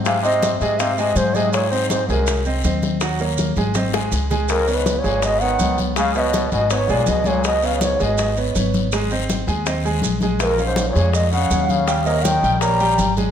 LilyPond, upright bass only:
\new Staff \with { instrumentName = "Upright bass" } { \clef bass \time 4/4 \key des \major \tempo 4 = 162 aes,4. aes,4. aes,4~ | aes,4. c,4. ees,4~ | ees,4. aes,,4. des,4~ | des,4. aes,,4. des,4~ |
des,4. aes,,4 ces,8 des,4~ | des,4. aes,,4. aes,,4~ | aes,,4. ees,4. bes,,4~ | bes,,4. f,4. ees,4~ |
ees,4. bes,,4. aes,,4 | }